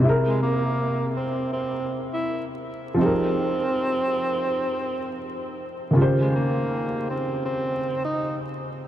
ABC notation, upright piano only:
X:1
M:4/4
L:1/8
Q:"Swing 16ths" 1/4=81
K:Eb
V:1 name="Upright piano"
[C,C=EAB]8 | [F,CEGAB]8 | [_D,E,FGc]8 |]